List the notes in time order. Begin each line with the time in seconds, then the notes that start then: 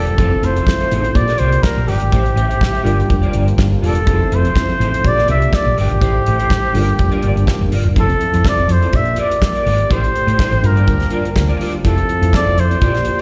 Already playing: E1 F3 G3 A#3 D4 F4 G4 A4 A#4
0.06 muted clean electric guitar stroke, closed hi-hat
0.17 F1 F3 A3 C4 E4 A4, kick, closed hi-hat
0.31 muted clean electric guitar stroke
0.42 F1 C4 E4 A4 C5, closed hi-hat
0.56 C4 E4 A4, closed hi-hat
0.67 muted clean electric guitar stroke, kick, snare
0.80 C4 E4 A4, closed hi-hat
0.91 A1 C4 E4 A4, closed hi-hat
1.04 muted clean electric guitar stroke, closed hi-hat
1.14 A#1 D3 A#3 F4 G4 D5, muted clean electric guitar stroke, kick, closed hi-hat
1.27 G4 A#4 D5, snare, closed hi-hat
1.38 C2 G4 A#4 C5 D5, closed hi-hat
1.52 muted clean electric guitar stroke, closed hi-hat
1.63 A#4, muted clean electric guitar stroke, kick, snare
1.76 A#1, muted clean electric guitar stroke
1.87 G1 G4 A#4 D5, open hi-hat
2.00 G#1, muted clean electric guitar stroke, closed hi-hat
2.12 A1 C3 A3 E4 G4 C5 E5, kick, closed hi-hat
2.25 muted clean electric guitar stroke, closed hi-hat
2.35 A1 G4 C5 E5, closed hi-hat
2.48 G4 C5 E5, closed hi-hat
2.60 muted clean electric guitar stroke, kick, snare
2.72 G4 C5 E5, closed hi-hat
2.83 G1 F3 G3 A#3 D4 F4 A#4 D5, closed hi-hat
2.97 muted clean electric guitar stroke, closed hi-hat
3.08 F1, muted clean electric guitar stroke, kick, closed hi-hat
3.22 F4 A#4 D5, closed hi-hat
3.33 G1 F4 A#4 D5, closed hi-hat
3.46 muted clean electric guitar stroke, closed hi-hat
3.58 G1, muted clean electric guitar stroke, kick, snare
3.71 muted clean electric guitar stroke
3.82 E1 F4 A4 A#4 D5, open hi-hat
3.95 muted clean electric guitar stroke, closed hi-hat
4.06 F1 F3 A3 C4 E4 A4, kick, closed hi-hat
4.20 muted clean electric guitar stroke
4.31 F1 C4 E4 A4 C5, closed hi-hat
4.44 C4 E4 A4, closed hi-hat
4.56 kick, snare
4.68 C4 E4 A4, closed hi-hat
4.79 A1 C4 E4 A4, closed hi-hat
4.92 muted clean electric guitar stroke, closed hi-hat
5.02 A#1 D3 A#3 F4 G4 D5, muted clean electric guitar stroke, kick, closed hi-hat
5.07 D5
5.16 G4 A#4 D5, snare, closed hi-hat
5.27 C2 G4 A#4 D5 E5, closed hi-hat
5.41 muted clean electric guitar stroke, closed hi-hat
5.52 D5, muted clean electric guitar stroke, kick, snare
5.66 A#1, muted clean electric guitar stroke
5.77 G1 G4 A#4 D5, open hi-hat
5.89 G#1, muted clean electric guitar stroke, closed hi-hat
6.00 A1 C3 A3 E4 G4 C5, kick, closed hi-hat
6.15 muted clean electric guitar stroke
6.26 A1 E4 G4 C5, closed hi-hat
6.39 E4 G4 C5, closed hi-hat
6.50 kick, snare
6.64 E4 G4 C5
6.72 G1 F3 G3 A#3 D4 F4 A4, open hi-hat
6.77 A#4 D5
6.81 A#4
6.88 muted clean electric guitar stroke, closed hi-hat
6.99 F1, muted clean electric guitar stroke, kick, closed hi-hat
7.11 F4 A#4 D5, closed hi-hat
7.22 G1 F4 A#4 D5, closed hi-hat
7.36 G1, muted clean electric guitar stroke, closed hi-hat
7.47 muted clean electric guitar stroke, kick, snare
7.61 F1, muted clean electric guitar stroke
7.71 G1 F4 A#4 D5, open hi-hat
7.84 E1, muted clean electric guitar stroke, closed hi-hat
7.94 F1 F3 A3 C4 E4 G#4 A4, kick, closed hi-hat
7.99 A4
8.03 A4
8.09 muted clean electric guitar stroke, closed hi-hat
8.20 muted clean electric guitar stroke, closed hi-hat
8.33 F2 C4 E4 A4, closed hi-hat
8.44 C4 E4 A4 D5, kick, snare
8.57 F1, muted clean electric guitar stroke, closed hi-hat
8.68 F2 C5, muted clean electric guitar stroke, closed hi-hat
8.82 C4 E4 A4, closed hi-hat
8.92 A#1 D3 A#3 F4 G4 D5, muted clean electric guitar stroke, kick, closed hi-hat
8.96 E5
9.05 muted clean electric guitar stroke, closed hi-hat
9.16 G4 A#4 D5, closed hi-hat
9.20 D5
9.31 muted clean electric guitar stroke, closed hi-hat
9.42 D5, muted clean electric guitar stroke, kick, snare
9.55 G4 A#4 D5, closed hi-hat
9.66 G#1 G4 A#4 D5, open hi-hat
9.78 muted clean electric guitar stroke, closed hi-hat
9.90 A1 C3 A3 E4 G4 A#4 C5, kick, closed hi-hat
9.97 C5
10.03 muted clean electric guitar stroke, closed hi-hat
10.14 muted clean electric guitar stroke, closed hi-hat
10.27 A2 E4 G4 C5, closed hi-hat
10.38 E4 G4 C5, kick, snare
10.52 A1, muted clean electric guitar stroke, closed hi-hat
10.62 G2 F3 G3 A#3 D4 F4 A#4, muted clean electric guitar stroke, closed hi-hat
10.66 A#4
10.76 F4 A#4 D5, closed hi-hat
10.87 D2, muted clean electric guitar stroke, kick, closed hi-hat
11.00 muted clean electric guitar stroke, snare, closed hi-hat
11.10 F4 A#4 D5, closed hi-hat
11.25 muted clean electric guitar stroke, closed hi-hat
11.35 D2, muted clean electric guitar stroke, kick, snare
11.48 F4 A#4 D5, closed hi-hat
11.59 F4 A#4 D5, open hi-hat
11.72 muted clean electric guitar stroke, closed hi-hat
11.83 F1 F3 A3 C4 E4 A4, kick, closed hi-hat
11.98 muted clean electric guitar stroke, closed hi-hat
12.09 muted clean electric guitar stroke, closed hi-hat
12.21 F2 C4 E4 A4, closed hi-hat
12.32 C4 E4 A4 D5, kick, snare
12.45 F1, muted clean electric guitar stroke
12.56 F2, muted clean electric guitar stroke, closed hi-hat
12.60 C5
12.69 C4 E4 A4, closed hi-hat
12.80 A#1 D3 A#3 F4 G4 D5, kick, closed hi-hat
12.95 muted clean electric guitar stroke, snare, closed hi-hat
13.05 muted clean electric guitar stroke, closed hi-hat
13.19 D5